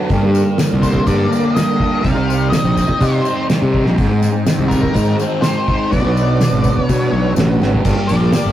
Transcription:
0.00 2.02 D3 medium
0.00 0.10 F#3 medium
0.00 0.11 B3 medium
0.00 0.10 D4 medium
0.09 0.20 G1 medium
0.09 1.32 G2 medium
0.09 2.03 G3 medium
0.09 2.03 A#3 medium
0.09 2.03 A#4 medium
0.09 kick loud
0.09 open hi-hat soft
0.09 tambourine soft
0.23 0.42 G2 medium
0.35 tambourine medium
0.58 1.80 D3 medium
0.58 snare loud
0.58 open hi-hat soft
0.58 tambourine loud
0.73 1.00 C2 medium
0.82 1.29 A#3 medium
0.82 1.08 C5 medium
0.82 kick medium
0.82 tambourine medium
0.95 kick medium
1.07 1.26 G2 loud
1.07 1.78 D4 medium
1.07 1.54 D5 medium
1.07 kick loud
1.07 open hi-hat soft
1.07 tambourine medium
1.30 2.04 A#3 medium
1.30 tambourine medium
1.55 2.05 G3 medium
1.55 2.00 D#5 medium
1.55 snare loud
1.55 open hi-hat soft
1.55 tambourine loud
1.80 2.04 D4 medium
1.80 kick medium
2.01 2.13 C2 medium
2.01 2.49 F5 loud
2.01 kick loud
2.01 open hi-hat soft
2.05 2.53 C3 medium
2.05 3.97 G3 medium
2.05 5.89 C4 medium
2.05 5.88 D#4 medium
2.05 5.88 C5 medium
2.05 tambourine soft
2.15 2.53 C2 medium
2.30 tambourine medium
2.49 3.01 D#5 medium
2.49 snare loud
2.49 open hi-hat soft
2.49 tambourine loud
2.54 3.74 C3 medium
2.64 2.83 A#1 medium
2.77 3.25 C4 medium
2.77 kick medium
2.77 tambourine medium
2.89 kick medium
3.00 3.20 C3 loud
3.00 3.74 D#4 medium
3.00 3.46 C5 medium
3.00 kick loud
3.00 open hi-hat medium
3.00 tambourine medium
3.25 3.99 C4 medium
3.25 tambourine medium
3.50 3.99 G3 medium
3.50 snare loud
3.50 open hi-hat soft
3.50 tambourine loud
3.62 3.86 C3 medium
3.74 3.99 D#4 medium
3.74 kick medium
3.85 3.95 A#1 medium
3.85 snare soft
3.97 4.06 G#1 medium
3.97 5.20 G#2 medium
3.97 5.89 G#3 medium
3.97 kick loud
3.97 open hi-hat soft
3.97 tambourine soft
4.07 4.27 G#2 medium
4.22 snare soft
4.22 tambourine medium
4.46 5.69 D#3 medium
4.46 snare loud
4.46 open hi-hat medium
4.46 tambourine medium
4.58 4.86 C2 medium
4.69 5.19 C4 medium
4.69 5.15 A#4 loud
4.69 kick medium
4.69 tambourine medium
4.83 kick medium
4.94 5.14 G#2 loud
4.94 5.68 D#4 medium
4.94 kick medium
4.94 open hi-hat soft
4.94 tambourine medium
5.19 5.92 C4 medium
5.19 tambourine medium
5.42 5.93 G#3 medium
5.42 5.93 C5 medium
5.42 snare loud
5.42 open hi-hat soft
5.42 tambourine medium
5.68 5.92 D#4 medium
5.68 kick medium
5.90 6.01 B1 loud
5.90 6.40 B2 medium
5.90 7.83 F#3 medium
5.90 7.83 B3 medium
5.90 7.83 D4 medium
5.90 7.82 B4 medium
5.90 6.83 D5 loud
5.90 kick loud
5.90 open hi-hat soft
5.90 tambourine soft
6.04 6.42 B1 medium
6.17 tambourine medium
6.41 7.62 B2 medium
6.41 snare loud
6.41 open hi-hat medium
6.41 tambourine medium
6.52 6.71 G#1 medium
6.64 7.11 B3 medium
6.64 kick medium
6.64 tambourine medium
6.78 kick medium
6.83 7.33 C#5 loud
6.89 7.08 B2 loud
6.89 7.60 D4 medium
6.89 kick loud
6.89 open hi-hat medium
6.89 tambourine medium
7.12 7.34 B1 medium
7.12 7.85 B3 medium
7.36 7.59 A1 medium
7.36 7.85 F#3 medium
7.36 snare loud
7.36 open hi-hat soft
7.36 tambourine medium
7.61 7.83 G#1 medium
7.61 7.85 D4 medium
7.61 snare medium
7.61 tambourine soft
7.74 floor tom medium
7.84 7.95 G1 medium
7.84 8.52 G2 medium
7.84 8.52 A#3 medium
7.84 8.52 D4 medium
7.84 8.52 A#4 medium
7.84 kick loud
7.84 crash medium
7.84 tambourine medium
8.07 8.29 A#1 medium
8.07 8.52 D4 medium
8.07 8.52 D5 loud
8.07 open hi-hat medium
8.07 tambourine medium
8.32 8.52 G3 medium
8.32 snare loud
8.32 open hi-hat medium
8.32 tambourine medium
8.45 8.52 G1 medium

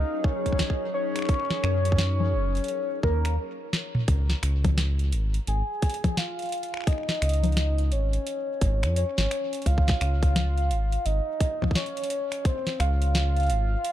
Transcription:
0.00 3.38 F#3 medium
0.00 3.38 C#4 medium
0.00 3.38 D#4 medium
0.00 0.76 F#4 medium
0.00 3.38 G#4 medium
0.00 3.38 A#4 medium
0.00 0.26 D#5 loud
0.24 0.93 C#5 loud
0.24 kick loud
0.46 kick soft
0.46 closed hi-hat medium
0.52 kick soft
0.59 kick medium
0.59 snare loud
0.59 closed hi-hat soft
0.70 kick medium
0.94 2.99 C#5 medium
1.16 finger snap medium
1.16 closed hi-hat medium
1.19 finger snap soft
1.22 finger snap soft
1.25 finger snap soft
1.29 finger snap soft
1.29 kick loud
1.29 closed hi-hat medium
1.34 finger snap soft
1.40 finger snap soft
1.45 finger snap soft
1.50 snare medium
1.64 2.35 F#2 loud
1.64 finger snap medium
1.85 closed hi-hat medium
1.92 kick medium
1.98 snare loud
1.98 closed hi-hat medium
2.20 low conga medium
2.33 2.60 F#1 medium
2.55 closed hi-hat soft
2.57 closed hi-hat soft
2.64 closed hi-hat medium
2.68 closed hi-hat medium
3.03 3.38 D#2 loud
3.03 3.36 A#4 medium
3.03 kick loud
3.25 finger snap medium
3.25 closed hi-hat medium
3.73 snare medium
3.95 mid tom medium
4.08 4.35 C#2 loud
4.08 kick loud
4.08 closed hi-hat medium
4.30 snare medium
4.30 closed hi-hat soft
4.43 5.14 C#2 loud
4.43 finger snap medium
4.43 closed hi-hat medium
4.64 kick medium
4.64 closed hi-hat medium
4.64 low conga medium
4.78 snare loud
4.78 closed hi-hat medium
4.99 closed hi-hat soft
5.12 5.39 G#1 medium
5.12 closed hi-hat medium
5.34 closed hi-hat medium
5.47 5.62 G#1 loud
5.47 6.19 G#5 loud
5.47 closed hi-hat medium
5.82 kick loud
5.82 closed hi-hat medium
5.90 closed hi-hat medium
5.94 closed hi-hat medium
6.04 kick medium
6.04 closed hi-hat medium
6.04 low conga medium
6.17 6.87 F5 loud
6.17 snare loud
6.17 closed hi-hat medium
6.39 closed hi-hat soft
6.42 closed hi-hat soft
6.46 closed hi-hat soft
6.49 closed hi-hat soft
6.52 closed hi-hat medium
6.58 closed hi-hat soft
6.63 closed hi-hat medium
6.74 finger snap medium
6.77 finger snap soft
6.81 finger snap soft
6.84 7.93 D#5 loud
6.84 finger snap soft
6.87 finger snap soft
6.87 kick loud
6.87 closed hi-hat medium
6.92 finger snap soft
6.98 finger snap soft
7.03 finger snap soft
7.09 snare medium
7.09 closed hi-hat soft
7.22 7.93 C#2 loud
7.22 finger snap medium
7.22 closed hi-hat medium
7.29 closed hi-hat medium
7.34 closed hi-hat soft
7.44 closed hi-hat medium
7.44 low conga medium
7.45 closed hi-hat soft
7.52 closed hi-hat soft
7.57 snare loud
7.57 closed hi-hat medium
7.78 closed hi-hat soft
7.92 8.18 G#1 medium
7.92 8.96 C#5 loud
7.92 closed hi-hat medium
8.13 closed hi-hat medium
8.27 closed hi-hat medium
8.61 8.85 G#1 medium
8.61 kick loud
8.61 closed hi-hat medium
8.83 9.04 F2 medium
8.83 finger snap medium
8.83 closed hi-hat medium
8.96 9.68 C#5 loud
8.96 closed hi-hat medium
9.18 9.27 G#1 medium
9.18 snare loud
9.18 closed hi-hat soft
9.31 finger snap medium
9.31 closed hi-hat medium
9.53 closed hi-hat medium
9.55 closed hi-hat soft
9.62 closed hi-hat soft
9.66 9.93 C#2 loud
9.66 10.00 F5 loud
9.66 kick medium
9.66 closed hi-hat medium
9.78 kick medium
9.88 kick loud
9.88 snare medium
9.88 closed hi-hat soft
10.01 10.72 C#2 loud
10.01 11.07 F5 loud
10.01 finger snap medium
10.01 closed hi-hat medium
10.23 kick medium
10.23 closed hi-hat medium
10.36 snare loud
10.36 closed hi-hat medium
10.36 low conga medium
10.58 closed hi-hat soft
10.71 10.97 G#1 medium
10.71 closed hi-hat medium
10.92 closed hi-hat medium
11.06 11.20 G#1 loud
11.06 11.75 D#5 loud
11.06 closed hi-hat medium
11.40 kick loud
11.40 closed hi-hat medium
11.62 kick soft
11.62 low conga medium
11.64 kick medium
11.71 kick medium
11.75 12.47 C#5 loud
11.75 snare loud
11.75 closed hi-hat soft
11.86 closed hi-hat soft
11.97 closed hi-hat medium
12.04 closed hi-hat medium
12.10 closed hi-hat medium
12.32 finger snap medium
12.32 closed hi-hat medium
12.45 12.79 C5 loud
12.45 kick loud
12.45 closed hi-hat medium
12.67 snare medium
12.67 closed hi-hat soft
12.80 13.51 C#2 medium
12.80 13.92 F5 loud
12.80 finger snap medium
12.80 closed hi-hat medium
13.02 closed hi-hat medium
13.15 snare loud
13.15 closed hi-hat medium
13.37 closed hi-hat soft
13.40 closed hi-hat soft
13.43 closed hi-hat soft
13.46 13.76 G#1 medium
13.46 closed hi-hat soft
13.50 closed hi-hat medium
13.85 closed hi-hat medium

